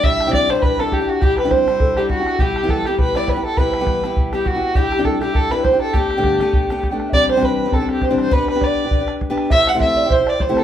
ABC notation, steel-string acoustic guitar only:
X:1
M:4/4
L:1/16
Q:"Swing" 1/4=203
K:Clyd
V:1 name="Steel-string acoustic guitar"
[G,DEG]3 [C,G,DEG]3 [G,DEG]4 [G,DEG]3 [DEG]3 | [G,DEG]3 [C,G,DEG]3 [G,DEG]4 [G,DEG]3 [DEG]3 | [G,B,EG]3 [E,G,B,EG]3 [G,B,EG]4 [G,B,EG]3 [B,EG]3 | [G,B,EG]3 [E,G,B,EG]3 [G,B,EG]4 [G,B,EG]3 [B,EG]3 |
[G,DEG]3 [C,G,DEG]3 [G,DEG]4 [G,DEG]3 [DEG]3 | [A,B,DG]3 [G,,D,A,B,DG]3 [A,B,DG]4 [A,B,DG]3 [A,B,DG]3 | [G,CDG]3 [C,E,G,CDG]4 [G,CDG]2 [G,CDG]4 [C,E,G,CDG]3 | [B,DGB]3 [B,DGB]4 [DGB]2 [DGB]4 [B,DGB]3 |
[A,EGc]3 [C,A,EGc]4 [EGc]2 [EGc]4 [C,A,EGc]3 |]